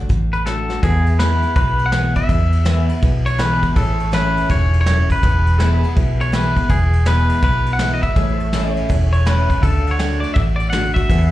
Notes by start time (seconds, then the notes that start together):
Already playing: A4 D5 F#5
0.09 A1 A2, kick, closed hi-hat
0.33 B4, closed hi-hat
0.45 D3 A3 D4 F#4 A4, snare, closed hi-hat
0.69 D4 F#4, snare
0.83 E2 E4 G#4 A4 B4 F#5, kick, crash
1.03 G#4, ride
1.11 E5
1.19 E3 G#3 B3 E4 G#4 B4, snare, ride
1.43 B3 E4, ride
1.55 B1 B2 E4 G#4 B4, kick, ride
1.79 ride
1.86 F#5
1.92 E3 G#3 B3 E4 G#4 B4, snare, ride
2.15 B3 E4 E5, kick, ride
2.28 E2 E4 G#4 B4, kick, ride
2.52 ride
2.65 E3 G#3 B3 E4 G#4 B4, snare, ride
2.89 B3 E4, ride
3.02 B1 B2 E4 G#4 B4, kick, ride
3.26 C#5, ride
3.38 E3 G#3 B3 E4 G#4 B4, snare, ride
3.63 kick, ride
3.75 A1 A2 E4 G#4 A4 B4 C#5 E5, kick, ride
3.96 A4, ride
4.02 C#5
4.12 E3 A3 C#4 E4 A4 B4 C#5, snare, ride
4.37 ride
4.49 E1 G#2 E4 A4 C#5, kick, ride
4.73 ride
4.81 C#5
4.86 F#2 E4 A4 C#5, snare, ride
5.10 B4, kick, ride
5.23 E1 E2 E4 G#4 B4, kick, ride
5.47 ride
5.59 E3 G#3 B3 E4 G#4 A4 B4 C#5 E5, snare, ride
5.79 G#4
5.83 B3 E4 B4, ride
5.96 B1 B2 E4 G#4 B4, kick, ride
6.20 C#5, ride
6.32 E3 G#3 B3 E4 G#4 B4, snare, ride
6.56 B3 E4, kick, ride
6.69 E1 E2 E4 G#4 B4, kick, ride
6.93 ride
7.05 E3 G#3 B3 E4 G#4 B4, snare, ride
7.29 ride
7.42 B1 B2 E4 G#4 B4, kick, ride
7.66 ride
7.73 F#5
7.79 E3 G#3 B3 E4 G#4 B4, snare, ride
7.94 D#5
8.03 B3 E4 E5, kick, ride
8.16 A1 A2 E4 G#4 A4 B4 C#5 E5, kick, ride
8.36 A4, ride
8.42 C#5
8.53 E3 A3 C#4 E4 A4 C#5, snare, ride
8.76 ride
8.89 E1 E2 E4 A4 C#5, kick, ride
9.13 C#5, ride
9.25 E3 A3 C#4 E4 A4 B4 C#5, snare, ride
9.49 C#4 E4, kick, ride
9.62 D2 D3 F#4 A4 D5 E5, kick, ride
9.87 F#5, ride
9.91 C#5
9.98 D3 A3 D4 F#4 A4 D5, snare, ride
10.20 D5, ride
10.34 A1 A2 F#4 A4 D5 E5, kick, ride
10.56 D5, ride
10.70 D3 A3 F#4 A4 F#5, snare, ride
10.74 D4 F#4 D5
10.94 F#4 E5, kick, ride
10.98 D4
11.08 E2 G#4 A4 B4 E5 F#5, kick, ride
11.29 G#4